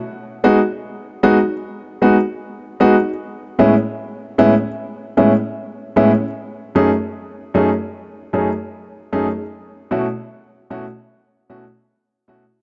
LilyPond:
\new Staff \with { instrumentName = "Grand piano" } { \time 4/4 \key fis \dorian \tempo 4 = 76 r8 <gis b dis' fis'>16 r8. <gis b dis' fis'>16 <dis' fis'>16 r8 <gis b dis' fis'>16 r8. <gis b dis' fis'>16 <dis' fis'>16 | r8 <a, gis b cis' e'>16 r8. <a, gis b cis' e'>16 <cis' e'>16 r8 <a, gis b cis' e'>16 r8. <a, gis b cis' e'>16 <cis' e'>16 | r8 <fis, a cis' dis' gis'>16 r8. <fis, a cis' dis' gis'>16 r8. <fis, a cis' dis' gis'>16 r8. <fis, a cis' dis' gis'>16 <dis' gis'>16 | r8 <b, a cis' e' fis'>16 r8. <b, a cis' e' fis'>16 r8. <b, a cis' e' fis'>16 r8. <b, a cis' e' fis'>16 <e' fis'>16 | }